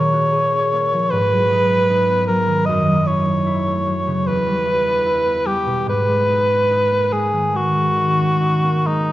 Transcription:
Already playing: harp A#2 A#3 C#4 G#4, cor anglais C#5
0.13 harp F#4
0.32 harp G#4
0.53 harp C#4
0.73 harp A#3
0.93 harp F3
1.10 harp G#2, cor anglais B4
1.32 harp F#3
1.51 harp D#4
1.71 harp C#4
1.90 harp D#4
2.09 harp B3
2.27 harp F#3, cor anglais A#4
2.47 harp D#3
2.65 harp F#2, cor anglais D#5
2.87 harp F#3
3.06 harp E4, cor anglais C#5
3.25 harp D#4
3.46 harp E4
3.67 harp A3
3.87 harp F#3
4.07 harp C#3
4.27 harp E2, cor anglais B4
4.46 harp G3
4.66 harp E4
4.88 harp D4
5.06 harp E4
5.25 harp B3
5.46 harp G3, cor anglais G4
5.66 harp B2
5.87 harp G#2, cor anglais B4
6.08 harp G#3
6.29 harp D#4
6.49 harp C#4
6.70 harp D#4
6.91 harp A#3
7.12 harp G#3, cor anglais G#4
7.32 harp D#3
7.53 harp G#3, cor anglais F#4
7.74 harp D#3
7.96 harp D#4
8.19 harp C#4
8.41 harp D#4
8.64 harp A#3
8.87 harp G#3, cor anglais D#4

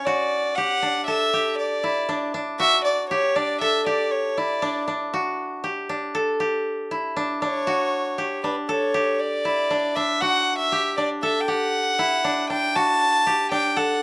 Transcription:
Already playing: koto C#4 E4
0.05 koto F#4, violin D5
0.56 koto G4, violin F#5
0.82 koto D4
1.06 koto A4, violin E5
1.33 koto G4
1.58 violin D5
1.84 koto E4
2.09 koto D4
2.34 koto D4
2.60 koto F#4, violin E5
2.85 violin D5
3.10 koto G4, violin C#5
3.36 koto D4, violin D5
3.61 koto A4, violin E5
3.86 koto G4, violin D5
4.11 violin C#5
4.37 koto E4, violin D5
4.62 koto D4
4.88 koto D4
5.14 koto F#4
5.64 koto G4
5.89 koto D4
6.15 koto A4
6.40 koto G4
6.91 koto E4
7.16 koto D4
7.42 koto D4, violin C#5
7.67 koto F#4
8.18 koto G4
8.44 koto D4, violin B4
8.69 koto A4, violin C#5
8.94 koto G4
9.20 violin D5
9.45 koto E4
9.71 koto D4
9.96 koto D4, violin E5
10.21 koto F#4, violin F#5
10.59 violin E5
10.72 koto G4
10.97 koto D4, violin D5
11.23 koto A4, violin E5
11.41 violin G5
11.48 koto G4, violin F#5
11.99 koto E4
12.24 koto D4
12.50 koto D4, violin G5
12.76 koto F#4, violin A5
13.27 koto G4
13.51 koto D4, violin G5
13.77 koto A4, violin F#5

